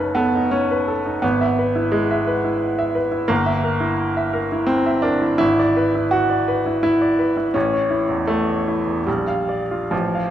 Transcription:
0.00 1.19 F#1 medium
0.00 0.16 C#4 medium
0.00 0.21 D#4 soft
0.00 0.16 A4 soft
0.00 0.71 B4 soft
0.15 0.51 B3 medium
0.15 0.44 A4 soft
0.35 0.91 D#4 soft
0.51 1.22 C#4 medium
0.71 0.99 B4 soft
0.88 1.16 A4 soft
1.06 1.23 D#4 soft
1.22 3.26 G#1 medium
1.22 1.93 B3 medium
1.41 1.69 E5 soft
1.59 1.86 B4 soft
1.76 2.31 E4 soft
1.92 2.95 G#3 medium
2.11 2.38 E5 soft
2.27 2.55 B4 soft
2.44 2.99 E4 soft
2.79 3.06 E5 soft
2.95 3.23 B4 soft
3.12 3.29 E4 soft
3.28 5.36 G1 medium
3.28 4.69 A#3 medium
3.46 3.74 E5 soft
3.64 3.92 A#4 soft
3.80 4.37 E4 soft
4.17 4.45 E5 soft
4.33 4.62 A#4 soft
4.52 5.09 E4 soft
4.67 5.03 C4 medium
4.86 5.15 E5 soft
5.02 5.39 D4 medium
5.02 5.32 A#4 soft
5.22 5.37 E4 soft
5.38 7.50 G#1 medium
5.38 5.94 E4 medium
5.59 5.88 D5 soft
5.77 6.05 B4 medium
5.95 6.51 E4 soft
6.11 6.83 F#4 medium
6.30 6.58 D5 soft
6.48 6.76 B4 soft
6.66 6.81 E4 soft
6.83 7.35 E4 medium
7.02 7.30 D5 soft
7.19 7.48 B4 soft
7.37 7.55 E4 soft
7.54 9.03 A1 medium
7.54 8.29 C#4 medium
7.73 8.03 C#5 soft
7.90 8.21 E4 soft
8.09 8.71 E2 soft
8.27 9.06 A3 medium
8.49 8.79 C#5 soft
8.68 8.99 E4 soft
8.87 9.07 E2 soft
9.06 9.89 A#1 soft
9.06 9.91 G3 medium
9.28 9.61 F5 soft
9.49 9.83 D5 soft
9.71 9.92 F4 soft
9.91 10.30 A1 soft
9.91 10.30 F3 medium
10.15 10.30 F5 soft

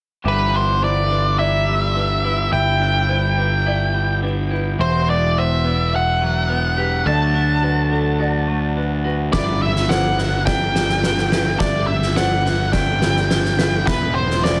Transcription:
0.24 2.49 G1 medium
0.24 7.02 D3 soft
0.24 4.75 E3 soft
0.24 1.68 G3 medium
0.24 7.02 B3 soft
0.24 2.50 D4 soft
0.24 4.76 G4 soft
0.24 0.82 E5 medium
0.28 0.56 B4 soft
0.53 1.09 D4 soft
0.53 0.84 C5 medium
0.82 1.39 E4 soft
0.82 1.11 C5 medium
0.82 1.39 D5 soft
1.10 1.95 D4 soft
1.10 1.40 B4 soft
1.39 2.24 E4 soft
1.39 1.96 D5 medium
1.39 2.52 E5 medium
1.68 2.52 G3 soft
1.96 2.80 D4 soft
1.96 2.23 B4 soft
2.24 3.09 E4 medium
2.24 2.53 B4 medium
2.52 4.76 G1 medium
2.52 3.93 G3 soft
2.52 4.77 E4 soft
2.52 3.09 E5 medium
2.52 4.19 G5 medium
2.81 3.37 D4 soft
3.09 3.65 E4 soft
3.09 3.38 C5 medium
3.37 4.22 D4 soft
3.37 3.66 B4 medium
3.66 4.49 E4 medium
3.66 4.23 D5 medium
3.94 4.80 G3 soft
4.22 4.80 D4 soft
4.22 4.50 B4 soft
4.51 4.80 E4 medium
4.51 4.80 B4 soft
4.79 7.02 E1 medium
4.79 6.21 E3 medium
4.79 7.04 E3 soft
4.79 7.04 F#4 soft
4.79 5.10 C5 medium
4.79 5.37 E5 medium
5.08 5.63 B3 soft
5.08 5.38 D5 medium
5.37 5.65 C5 medium
5.37 5.95 E5 medium
5.65 6.48 B3 soft
5.65 5.93 B4 soft
5.93 6.50 E5 medium
5.93 7.06 F#5 medium
6.22 7.07 F#3 soft
6.49 7.06 B3 soft
6.49 6.77 B4 soft
6.78 7.07 G4 soft
6.78 7.07 B4 medium
7.05 9.29 D2 medium
7.05 8.48 D3 medium
7.05 13.82 D3 soft
7.05 9.31 F#3 soft
7.05 9.30 A3 soft
7.05 9.31 A4 soft
7.05 7.64 D5 medium
7.05 8.73 A5 medium
7.35 7.90 D4 soft
7.62 8.18 F#4 soft
7.62 7.92 B4 medium
7.91 8.77 D4 soft
7.91 8.20 A4 soft
8.19 9.03 F#4 soft
8.19 8.77 D5 medium
8.48 9.33 A3 soft
8.76 9.62 D4 soft
8.76 9.04 B4 soft
9.05 9.33 F#4 soft
9.05 9.34 B4 medium
9.33 11.56 G1 medium
9.33 10.74 G3 medium
9.33 13.83 B3 soft
9.33 13.83 E4 soft
9.33 14.60 B4 soft
9.33 9.62 D5 medium
9.33 9.90 E5 medium
9.33 kick medium
9.33 snare medium
9.62 10.17 D4 soft
9.62 9.91 E5 medium
9.76 snare soft
9.89 10.47 E4 soft
9.89 10.18 C5 medium
9.89 10.42 F#5 medium
9.89 snare medium
10.17 11.03 D4 soft
10.17 10.46 B4 soft
10.17 snare soft
10.45 11.32 E4 medium
10.45 11.03 D5 medium
10.45 11.63 G5 medium
10.45 kick medium
10.45 snare medium
10.75 11.60 G3 soft
10.75 snare medium
10.90 snare soft
11.03 11.88 D4 soft
11.03 11.30 B4 soft
11.03 snare medium
11.18 snare soft
11.32 12.16 E4 medium
11.32 11.60 B4 medium
11.32 snare medium
11.60 13.83 G1 medium
11.60 13.01 G3 medium
11.60 11.87 D5 medium
11.60 12.17 E5 medium
11.60 kick medium
11.60 snare medium
11.87 12.44 D4 soft
11.87 12.17 E5 medium
12.02 snare soft
12.16 12.73 E4 medium
12.16 12.45 C5 medium
12.16 12.73 F#5 medium
12.16 snare medium
12.44 13.29 D4 soft
12.44 12.73 B4 soft
12.44 snare soft
12.72 13.57 E4 soft
12.72 13.29 D5 medium
12.72 13.90 G5 medium
12.72 kick medium
12.72 snare medium
13.02 13.87 G3 soft
13.02 snare medium
13.17 snare soft
13.30 13.87 D4 soft
13.30 13.57 B4 medium
13.30 snare medium
13.45 snare soft
13.58 13.87 E4 medium
13.58 13.87 B4 medium
13.58 snare medium
13.86 14.60 E1 medium
13.86 14.60 E3 medium
13.86 14.60 E3 soft
13.86 14.60 B3 soft
13.86 14.13 B4 medium
13.86 14.43 E5 medium
13.86 kick medium
13.86 snare medium
14.15 14.60 B3 soft
14.15 14.44 C5 medium
14.31 snare soft
14.43 14.60 C5 medium
14.43 14.60 D5 medium
14.43 snare medium

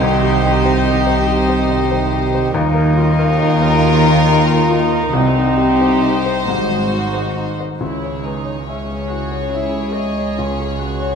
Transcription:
0.00 2.51 C2 medium
0.00 2.51 C2 loud
0.00 2.51 C3 medium
0.00 2.58 C3 medium
0.00 2.51 D#3 medium
0.00 0.40 G3 medium
0.00 0.20 D#4 medium
0.00 2.50 D#4 medium
0.00 2.51 D#4 medium
0.00 0.62 G4 medium
0.00 2.51 G4 medium
0.00 0.14 C5 medium
0.00 0.84 C5 medium
0.00 2.51 C5 medium
0.00 1.04 D#5 medium
0.00 2.51 D#5 medium
0.00 2.51 G5 medium
0.21 1.68 D#4 medium
0.21 0.56 G4 medium
0.41 1.90 G3 medium
0.41 0.77 D#4 medium
0.63 1.47 G4 medium
0.63 0.99 C5 medium
0.85 1.20 D#4 medium
1.05 1.41 C5 medium
1.05 3.60 D#5 medium
1.26 1.62 G4 medium
1.26 2.57 C5 medium
1.48 2.58 G4 medium
1.48 1.83 C5 medium
1.69 2.10 D#4 medium
1.69 2.04 D#4 medium
1.91 2.31 G3 medium
1.91 2.25 C5 medium
2.11 2.96 D#4 medium
2.11 2.46 G4 medium
2.32 2.57 G3 medium
2.32 2.55 C5 medium
2.53 5.09 D#2 loud
2.53 5.13 D#2 loud
2.53 5.13 D#3 loud
2.53 5.09 D#3 loud
2.53 5.17 D#3 medium
2.53 7.44 D#4 loud
2.53 7.57 D#4 loud
2.53 5.09 F4 loud
2.53 5.14 F4 loud
2.53 5.09 A#4 loud
2.53 4.80 D#5 medium
2.53 4.80 F5 loud
2.74 4.45 A#3 medium
2.74 3.09 A#4 medium
2.97 4.25 D#4 medium
2.97 3.31 F4 medium
3.19 4.03 F4 medium
3.19 3.53 A#4 medium
3.39 3.74 D#4 medium
3.39 3.82 A#4 medium
3.61 3.96 A#4 medium
3.61 6.22 D#5 medium
3.83 4.18 F4 medium
3.83 5.17 A#4 medium
4.05 5.17 F4 medium
4.05 4.40 A#4 medium
4.28 4.62 D#4 medium
4.47 4.89 A#3 medium
4.47 4.84 A#4 medium
4.68 5.55 D#4 medium
4.68 5.05 F4 medium
4.91 5.17 A#3 medium
4.91 5.14 A#4 medium
5.12 6.43 C2 medium
5.12 6.45 C2 medium
5.12 6.50 C3 medium
5.12 6.45 C3 loud
5.12 6.43 C3 loud
5.12 6.29 G3 medium
5.12 6.29 D#4 loud
5.12 6.43 G4 medium
5.12 7.56 C5 medium
5.12 7.44 C5 medium
5.12 6.48 G5 medium
5.35 6.51 G3 medium
5.35 5.72 C5 medium
5.56 6.90 D#4 medium
5.56 5.93 G4 medium
5.78 6.50 G4 medium
5.78 6.16 C5 medium
6.04 6.39 D#4 medium
6.23 6.48 C5 medium
6.23 7.57 D#5 medium
6.45 7.61 G#1 medium
6.45 7.83 G#2 medium
6.45 7.61 G#2 medium
6.45 7.77 G#2 medium
6.45 7.48 F#3 medium
6.45 7.46 C4 medium
6.45 7.56 F#4 medium
6.45 7.48 F#5 medium
6.68 7.84 D#3 medium
6.68 7.06 C5 medium
6.91 7.84 D#4 medium
6.91 7.29 F#4 medium
7.14 7.84 F#4 medium
7.14 7.50 C5 medium
7.36 7.72 D#4 medium
7.36 7.84 C5 medium
7.58 7.82 C5 medium
7.58 7.84 D#5 medium
7.80 10.32 C#2 medium
7.80 11.15 C#2 medium
7.80 10.36 C#3 medium
7.80 8.21 E4 medium
7.80 11.15 G#4 medium
7.80 11.15 C#5 medium
8.04 8.38 C#5 soft
8.23 10.77 G#3 soft
8.23 8.67 D#4 medium
8.23 8.46 B4 soft
8.46 8.79 C#5 medium
8.65 9.08 C#4 medium
8.65 11.15 E4 soft
8.65 9.02 E5 soft
8.90 9.23 C#5 soft
9.08 9.44 E4 soft
9.08 9.51 F#4 medium
9.08 9.93 G#4 medium
9.32 9.65 C#5 soft
9.52 9.94 E4 medium
9.52 11.15 C#5 soft
9.52 9.87 E5 medium
9.75 10.08 G#4 soft
9.94 11.15 G#4 soft
9.94 10.37 D#5 medium
9.94 10.30 E5 soft
10.17 10.50 C#5 medium
10.37 11.15 C#2 medium
10.37 11.15 C#3 medium
10.37 10.80 C#4 medium
10.60 10.92 G#4 soft
10.79 11.15 G#3 soft
10.79 11.15 F#4 medium
10.79 11.01 F#4 soft
11.01 11.15 C#5 medium

